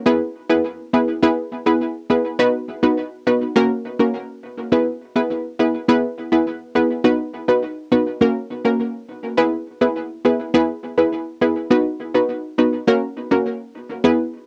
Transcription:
0.06 0.21 B3 medium
0.06 0.21 E4 medium
0.06 0.21 G#4 medium
0.06 0.21 B4 loud
0.49 0.64 B3 medium
0.49 0.65 E4 medium
0.49 0.65 G#4 medium
0.49 0.65 B4 medium
0.93 1.08 B3 medium
0.93 1.08 E4 medium
0.93 1.08 G#4 medium
0.93 1.09 B4 medium
1.23 1.37 B3 medium
1.23 1.37 E4 medium
1.23 1.38 G#4 medium
1.23 1.38 B4 loud
1.66 1.81 B3 medium
1.66 1.81 E4 medium
1.66 1.81 G#4 medium
1.66 1.81 B4 medium
2.10 2.25 B3 medium
2.10 2.25 E4 medium
2.10 2.25 G#4 medium
2.10 2.25 B4 medium
2.39 2.54 B3 medium
2.39 2.54 D#4 medium
2.39 2.54 F#4 medium
2.39 2.54 B4 loud
2.83 2.98 B3 medium
2.83 2.98 D#4 medium
2.83 2.98 F#4 medium
2.83 2.98 B4 medium
3.27 3.41 B3 medium
3.27 3.41 D#4 medium
3.27 3.42 F#4 medium
3.27 3.42 B4 medium
3.56 3.70 A#3 loud
3.56 3.70 C#4 medium
3.56 3.71 F#4 medium
3.56 3.71 A#4 loud
3.99 4.14 A#3 medium
3.99 4.14 C#4 medium
3.99 4.14 F#4 medium
3.99 4.14 A#4 medium
4.72 4.87 B3 medium
4.72 4.87 E4 medium
4.72 4.87 G#4 medium
4.72 4.87 B4 loud
5.16 5.31 B3 medium
5.16 5.31 E4 medium
5.16 5.31 G#4 medium
5.16 5.31 B4 medium
5.59 5.74 B3 medium
5.59 5.74 E4 medium
5.59 5.75 G#4 medium
5.59 5.75 B4 medium
5.88 6.03 B3 medium
5.88 6.03 E4 medium
5.88 6.04 G#4 medium
5.88 6.04 B4 loud
6.32 6.47 B3 medium
6.32 6.47 E4 medium
6.32 6.47 G#4 medium
6.32 6.47 B4 medium
6.75 6.90 B3 medium
6.75 6.91 E4 medium
6.75 6.91 G#4 medium
6.75 6.91 B4 medium
7.04 7.19 B3 medium
7.04 7.20 D#4 medium
7.04 7.20 F#4 medium
7.04 7.20 B4 loud
7.48 7.63 B3 medium
7.48 7.63 D#4 medium
7.48 7.64 F#4 medium
7.48 7.64 B4 medium
7.92 8.07 B3 medium
7.92 8.07 D#4 medium
7.92 8.07 F#4 medium
7.92 8.07 B4 medium
8.21 8.36 A#3 medium
8.21 8.36 C#4 medium
8.21 8.36 F#4 medium
8.21 8.36 A#4 loud
8.65 8.80 A#3 medium
8.65 8.80 C#4 medium
8.65 8.80 F#4 medium
8.65 8.80 A#4 medium
9.37 9.53 B3 medium
9.37 9.53 E4 medium
9.37 9.53 G#4 medium
9.37 9.53 B4 loud
9.81 9.96 B3 medium
9.81 9.96 E4 medium
9.81 9.96 G#4 medium
9.81 9.97 B4 medium
10.25 10.40 B3 medium
10.25 10.40 E4 medium
10.25 10.40 G#4 medium
10.25 10.40 B4 medium
10.54 10.69 B3 medium
10.54 10.69 E4 medium
10.54 10.69 G#4 medium
10.54 10.69 B4 loud
10.98 11.13 B3 medium
10.98 11.13 E4 medium
10.98 11.13 G#4 medium
10.98 11.13 B4 medium
11.41 11.57 B3 medium
11.41 11.57 E4 medium
11.41 11.57 G#4 medium
11.41 11.57 B4 medium
11.71 11.86 B3 medium
11.71 11.86 D#4 medium
11.71 11.86 F#4 medium
11.71 11.86 B4 loud
12.14 12.29 B3 medium
12.14 12.30 D#4 medium
12.14 12.30 F#4 medium
12.14 12.30 B4 medium
12.58 12.73 B3 medium
12.58 12.73 D#4 medium
12.58 12.73 F#4 medium
12.58 12.73 B4 medium
12.87 13.02 A#3 loud
12.87 13.02 C#4 medium
12.87 13.03 F#4 medium
12.87 13.03 A#4 loud
13.31 13.46 A#3 medium
13.31 13.46 C#4 medium
13.31 13.46 F#4 medium
13.31 13.46 A#4 medium
14.04 14.19 B3 medium
14.04 14.19 E4 medium
14.04 14.19 G#4 medium
14.04 14.19 B4 loud

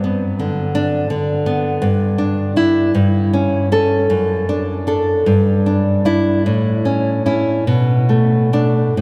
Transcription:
0.00 1.79 G2 medium
0.00 1.10 B3 medium
0.39 1.09 D3 medium
0.75 1.32 D4 medium
1.10 1.82 D3 medium
1.46 1.83 B3 medium
1.82 2.92 G2 medium
2.18 2.55 D4 medium
2.56 2.91 D4 medium
2.56 2.91 E4 medium
2.95 4.07 G2 medium
3.33 3.71 C#4 medium
3.72 4.06 C#4 medium
3.72 4.06 A4 medium
4.10 5.23 F#2 medium
4.49 4.86 D4 medium
4.87 5.22 D4 medium
4.87 5.23 A4 medium
5.26 6.42 G2 medium
5.66 6.04 D4 medium
6.05 6.42 D4 medium
6.05 6.42 E4 medium
6.46 7.63 A2 medium
6.85 7.25 C#4 medium
7.26 7.63 C#4 medium
7.26 7.63 E4 medium
7.67 8.93 B2 medium
8.09 8.52 A3 medium
8.53 8.93 A3 medium
8.53 8.93 D4 medium
8.97 9.01 A2 medium

